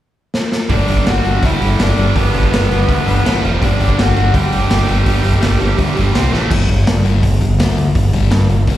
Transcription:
0.34 snare
0.52 snare
0.69 G1 G2 D3 G3 D4 D5, kick, open hi-hat
0.88 G1 G2 D3 G3, open hi-hat
0.97 kick
1.05 G1 G2 D3 G3 F#4 F#5, snare, open hi-hat
1.24 G1 G2 D3 G3, open hi-hat
1.42 D2 G2 D3 G3 E4 E5, kick, open hi-hat
1.60 G1 G2 D3 G3, open hi-hat
1.78 G1 G2 D3 G3 D4 D5, snare, open hi-hat
1.97 G1 G2 D3 G3, open hi-hat
2.16 G1 G2 D3 G3 B3 B4, kick, open hi-hat
2.34 G1 G2 D3 G3 B3 B4, open hi-hat
2.43 kick
2.52 G1 G2 D3 G3, snare, open hi-hat
2.70 G1 G2 D3 G3, open hi-hat
2.88 D2 G2 D3 G3, kick, open hi-hat
3.06 G1 G2 D3 G3, open hi-hat
3.24 A1 A2 E3 A3, snare, open hi-hat
3.42 F1 F2 C3 F3, open hi-hat
3.61 G1 G2 D3 G3 D4 D5, kick, open hi-hat
3.79 G1 G2 D3 G3, open hi-hat
3.89 kick
3.98 G1 G2 D3 G3 F#4 F#5, snare, open hi-hat
4.16 G1 G2 D3 G3, open hi-hat
4.34 D2 G2 D3 G3 G4 G5, kick, open hi-hat
4.52 G1 G2 D3 G3, open hi-hat
4.70 G1 G2 D3 G3, snare, open hi-hat
4.87 G1 G2 D3 G3, open hi-hat
5.06 G1 G2 D3 G3, kick, open hi-hat
5.24 G1 G2 D3 G3, open hi-hat
5.33 kick
5.42 G1 G2 D3 G3, snare, open hi-hat
5.60 G1 G2 D3 G3, open hi-hat
5.78 D2 G2 D3 G3, kick, open hi-hat
5.96 G1 G2 D3 G3, open hi-hat
6.14 C2 C3 G3 C4, snare, open hi-hat
6.32 A1 A2 E3 A3, snare
6.49 G1 G2 D3 G3, kick, crash
6.68 G1 G2 D3, kick, open hi-hat
6.86 G2 D3, snare, open hi-hat
7.04 G1 G2 D3 G3, open hi-hat
7.23 G1 G2 D3, kick, open hi-hat
7.41 G1 G2 D3, kick, open hi-hat
7.58 D2 G2 D3 G3, snare, open hi-hat
7.77 G2 D3, open hi-hat
7.95 G1 G2 D3, kick, open hi-hat
8.13 G1 G2 D3 G3, kick, open hi-hat
8.31 G2 D3, snare, open hi-hat
8.49 G1 G2 D3, open hi-hat
8.67 G1 G2 D3 G3, kick, open hi-hat

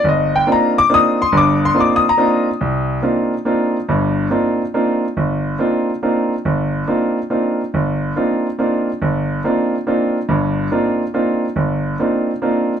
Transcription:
0.04 G1
0.09 D#5
0.36 G5
0.47 A#3 C4 D4 D#4 F4
0.52 A#5
0.78 D6
0.89 A#3 C4 D4 D#4 F4
0.94 D#6
1.22 C6
1.32 G1 G2
1.37 D6
1.65 C6
1.74 A#3 C4 D4 D#4 F4
1.80 D6
1.96 D#6
2.09 A#5
2.17 A#3 C4 D4 D#4 F4
2.61 C2
3.02 A#3 C4 D4 D#4 F4
3.45 A#3 C4 D4 D#4 F4
3.89 G1 G2
4.31 A#3 C4 D4 D#4 F4
4.74 A#3 C4 D4 D#4 F4
5.17 G1
5.59 A#3 C4 D4 D#4 F4
6.03 A#3 C4 D4 D#4 F4
6.45 G1
6.87 A#3 C4 D4 D#4 F4
7.30 A#3 C4 D4 D#4 F4
7.74 G1
8.16 A#3 C4 D4 D#4 F4
8.59 A#3 C4 D4 D#4 F4
9.02 G1
9.44 A#3 C4 D4 D#4 F4
9.87 A#3 C4 D4 D#4 F4
10.29 G1 G2
10.71 A#3 C4 D4 D#4 F4
11.14 A#3 C4 D4 D#4 F4
11.56 G1
11.99 A#3 C4 D4 D#4 F4
12.42 A#3 C4 D4 D#4 F4

